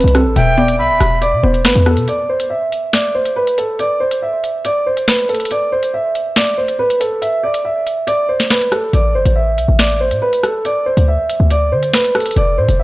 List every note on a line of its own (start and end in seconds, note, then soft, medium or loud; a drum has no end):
0.00 0.14 C4 medium
0.00 0.14 B4 medium
0.00 closed hi-hat medium
0.04 0.27 C2 loud
0.04 closed hi-hat medium
0.15 0.36 C4 medium
0.15 0.35 A4 medium
0.15 cross-stick medium
0.15 closed hi-hat medium
0.26 0.36 A1 loud
0.36 0.81 E1 loud
0.36 1.43 B2 medium
0.36 0.56 E5 medium
0.36 0.76 G5 loud
0.36 closed hi-hat medium
0.58 1.42 B3 medium
0.58 0.78 D5 medium
0.68 closed hi-hat medium
0.79 0.91 B1 loud
0.79 1.19 E5 medium
0.79 1.19 B5 loud
0.90 1.00 E1 loud
1.00 1.34 E1 loud
1.00 cross-stick medium
1.00 closed hi-hat medium
1.21 1.42 D5 loud
1.21 closed hi-hat medium
1.33 1.43 B2 loud
1.43 1.66 E1 loud
1.43 1.64 B3 medium
1.43 1.63 C5 medium
1.54 closed hi-hat medium
1.65 1.75 G1 medium
1.65 1.85 B3 medium
1.65 1.85 B4 medium
1.65 finger snap loud
1.65 snare loud
1.65 closed hi-hat medium
1.76 1.99 E2 loud
1.86 2.08 B3 medium
1.86 2.06 A4 medium
1.86 cross-stick medium
1.97 2.07 B2 loud
1.97 closed hi-hat medium
2.08 2.28 D5 medium
2.08 closed hi-hat medium
2.29 2.49 C5 medium
2.40 closed hi-hat medium
2.50 2.91 E5 medium
2.72 closed hi-hat medium
2.93 3.13 D5 medium
2.93 finger snap loud
2.93 snare loud
2.93 closed hi-hat medium
3.15 3.35 C5 medium
3.25 closed hi-hat medium
3.36 3.56 B4 medium
3.47 closed hi-hat medium
3.58 3.78 A4 medium
3.58 closed hi-hat medium
3.79 3.99 D5 medium
3.79 closed hi-hat medium
4.00 4.20 C5 medium
4.11 closed hi-hat medium
4.22 4.63 E5 medium
4.44 closed hi-hat medium
4.65 4.85 D5 medium
4.65 closed hi-hat medium
4.86 5.06 C5 medium
4.97 closed hi-hat medium
5.08 5.28 B4 medium
5.08 finger snap medium
5.08 snare loud
5.19 closed hi-hat medium
5.29 5.49 A4 medium
5.29 closed hi-hat soft
5.34 closed hi-hat medium
5.40 closed hi-hat medium
5.45 closed hi-hat medium
5.51 5.71 D5 medium
5.51 closed hi-hat medium
5.72 5.92 C5 medium
5.83 closed hi-hat medium
5.94 6.34 E5 medium
6.15 closed hi-hat medium
6.36 6.57 D5 medium
6.36 finger snap medium
6.36 snare loud
6.36 closed hi-hat medium
6.58 6.78 C5 medium
6.68 closed hi-hat medium
6.79 6.99 B4 medium
6.90 closed hi-hat medium
7.00 7.20 A4 medium
7.00 closed hi-hat medium
7.22 7.42 E5 medium
7.22 closed hi-hat medium
7.43 7.63 D5 medium
7.54 closed hi-hat medium
7.65 8.05 E5 medium
7.87 closed hi-hat medium
8.07 8.27 D5 loud
8.07 closed hi-hat medium
8.29 8.49 C5 medium
8.40 snare medium
8.40 closed hi-hat medium
8.51 8.71 B4 medium
8.51 finger snap loud
8.51 snare loud
8.61 closed hi-hat medium
8.72 8.92 A4 medium
8.72 cross-stick medium
8.72 closed hi-hat medium
8.93 9.16 A1 loud
8.93 9.14 D5 medium
8.93 closed hi-hat medium
9.15 9.25 G1 loud
9.15 9.35 C5 medium
9.26 9.59 A1 loud
9.26 closed hi-hat medium
9.36 9.76 E5 medium
9.58 9.68 B1 loud
9.58 closed hi-hat medium
9.68 10.13 A1 loud
9.79 9.99 D5 medium
9.79 finger snap medium
9.79 snare loud
9.79 closed hi-hat medium
10.01 10.21 C5 medium
10.11 10.21 A2 loud
10.11 closed hi-hat medium
10.22 10.42 B4 loud
10.33 closed hi-hat medium
10.43 10.64 A4 medium
10.43 cross-stick medium
10.43 closed hi-hat medium
10.65 10.85 D5 medium
10.65 closed hi-hat medium
10.86 11.06 C5 medium
10.97 11.18 D2 loud
10.97 closed hi-hat medium
11.08 11.48 E5 medium
11.30 closed hi-hat medium
11.40 11.74 D2 loud
11.50 11.71 D5 medium
11.50 closed hi-hat medium
11.72 11.92 D3 medium
11.72 11.92 C5 medium
11.83 closed hi-hat medium
11.93 12.14 B4 medium
11.93 finger snap loud
11.93 snare loud
12.04 closed hi-hat medium
12.15 12.35 A4 medium
12.15 cross-stick medium
12.15 closed hi-hat soft
12.20 closed hi-hat medium
12.26 closed hi-hat medium
12.31 closed hi-hat medium
12.36 12.59 F1 loud
12.36 12.57 D5 medium
12.36 closed hi-hat medium
12.58 12.68 A2 loud
12.58 12.78 C5 medium
12.68 12.83 F1 loud
12.68 closed hi-hat medium
12.79 12.83 E5 medium